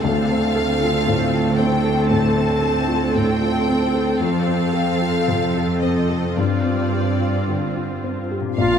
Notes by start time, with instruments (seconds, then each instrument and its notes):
Already playing: harp A3 A4
0.03 cello section D2, felt piano D2, harp D3, viola section C4 A4, violin section F5
0.30 felt piano C4
0.55 harp A4, felt piano A4
0.81 felt piano F4
1.07 felt piano A2, harp F4
1.33 felt piano F4
1.56 harp C4, felt piano C4, violin section G5
1.84 felt piano A4
2.08 felt piano A2, harp A3, violin section A5
2.36 felt piano C4
2.62 felt piano A4, harp A4
2.88 felt piano F4
3.13 felt piano A2, harp F4, violin section G5
3.41 felt piano F4
3.67 harp C4, felt piano C4
3.94 felt piano A4
4.20 harp F2, cello section F2, felt piano F2, violin section F5
4.47 felt piano C4
4.73 felt piano A4, harp A4
5.01 felt piano F4
5.28 felt piano C3, harp F4
5.55 felt piano F4
5.81 harp C4, felt piano C4, violin section D#5
6.10 felt piano A4
6.36 harp G2, felt piano G2, cello section G2, viola section C4 F4, violin section D5
6.64 felt piano C4
6.92 harp G4, felt piano G4
7.20 felt piano F4
7.47 felt piano D3, harp F4
7.75 felt piano F4
8.04 harp C4, felt piano C4
8.31 felt piano G4
8.40 harp A#2
8.44 harp D4
8.49 harp F4
8.57 felt piano A#1, double bass section A#1, cello section A#2, viola section D4 A#4, clarinet F4, violin section F5